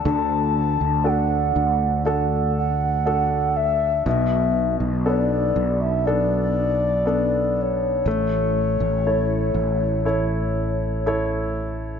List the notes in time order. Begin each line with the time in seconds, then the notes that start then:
Already playing: D4 F#4 A4
0.05 D2 D3 A5
0.81 D2
1.04 D4 F#4 A4 G5
1.09 F#5
1.56 D2
2.05 D4 F#4 A4 F#5
2.57 F#5
3.06 D4 F#4 A4
3.56 E5
4.06 B1 B2 E5
4.80 B1
5.05 B3 D4 A4 D5
5.56 B1
5.80 E5
6.05 B3 D4 A4 D5
7.05 B3 D4 A4
7.56 D5
7.61 C#5
8.06 A1 A3
8.80 A1
9.07 E4 A4 C#5
9.54 A1
10.05 E4 A4 C#5
11.06 E4 A4 C#5